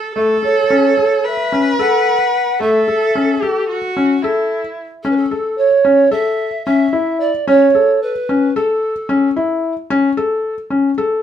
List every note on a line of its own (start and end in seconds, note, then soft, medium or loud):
0.00 0.12 A4 medium
0.15 0.34 A3 medium
0.15 1.26 A4 medium
0.43 0.61 A4 medium
0.43 1.28 C#5 medium
0.70 0.89 C#4 medium
0.97 1.34 A4 medium
1.24 2.61 B4 medium
1.24 1.82 E5 loud
1.52 1.70 C#4 medium
1.79 2.15 A4 medium
1.79 2.63 F#5 medium
2.60 2.78 A3 medium
2.60 3.43 A4 medium
2.60 3.42 E5 medium
2.88 3.06 A4 medium
3.15 3.33 C#4 medium
3.42 3.68 G4 medium
3.42 3.78 A4 medium
3.69 4.24 F#4 medium
3.97 4.14 C#4 medium
4.22 4.77 E4 medium
4.22 4.60 A4 medium
5.03 5.22 C#4 medium
5.03 5.12 A4 medium
5.10 5.18 B4 medium
5.17 5.59 A4 medium
5.31 5.67 A4 medium
5.58 6.13 C#5 medium
5.85 6.03 C#4 medium
6.11 6.48 A4 medium
6.11 6.65 E5 loud
6.65 6.85 C#4 medium
6.65 7.22 E5 loud
6.93 7.29 E4 medium
7.20 7.49 D5 medium
7.48 7.65 C#4 medium
7.48 8.02 C#5 loud
7.75 8.10 A4 medium
8.02 8.58 B4 medium
8.29 8.47 C#4 medium
8.56 8.92 A4 medium
8.56 9.64 A4 medium
9.09 9.27 C#4 medium
9.36 9.72 E4 medium
9.90 10.08 C#4 medium
10.17 10.53 A4 medium
10.70 10.89 C#4 medium
10.98 11.22 A4 medium